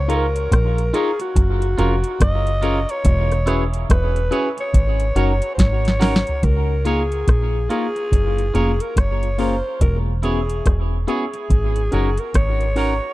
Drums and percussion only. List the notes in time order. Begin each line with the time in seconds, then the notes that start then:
0.10 closed hi-hat
0.36 closed hi-hat
0.52 kick, cross-stick, closed hi-hat
0.78 closed hi-hat
0.94 closed hi-hat
1.20 closed hi-hat
1.36 kick, closed hi-hat
1.62 closed hi-hat
1.79 closed hi-hat
2.04 closed hi-hat
2.20 kick, cross-stick, closed hi-hat
2.47 closed hi-hat
2.63 closed hi-hat
2.89 closed hi-hat
3.05 kick, closed hi-hat
3.32 cross-stick, closed hi-hat
3.47 cross-stick, closed hi-hat
3.74 closed hi-hat
3.90 kick, cross-stick, closed hi-hat
4.16 closed hi-hat
4.32 closed hi-hat
4.58 closed hi-hat
4.74 kick, closed hi-hat
5.00 closed hi-hat
5.16 closed hi-hat
5.42 closed hi-hat
5.58 kick, snare, closed hi-hat
5.85 snare, closed hi-hat
6.01 snare, open hi-hat
6.16 snare
6.27 closed hi-hat, floor tom
6.43 kick, closed hi-hat
6.85 closed hi-hat
7.12 closed hi-hat
7.28 kick, cross-stick, closed hi-hat
7.70 closed hi-hat
7.96 closed hi-hat
8.12 kick, closed hi-hat
8.38 closed hi-hat
8.55 closed hi-hat
8.80 closed hi-hat
8.96 kick, cross-stick, closed hi-hat
9.23 closed hi-hat
9.39 open hi-hat
9.81 kick, closed hi-hat
10.23 closed hi-hat
10.50 closed hi-hat
10.66 kick, cross-stick, closed hi-hat
11.08 closed hi-hat
11.34 closed hi-hat
11.50 kick, closed hi-hat
11.76 closed hi-hat
11.92 closed hi-hat
12.18 closed hi-hat
12.34 kick, cross-stick, closed hi-hat
12.61 closed hi-hat
12.76 open hi-hat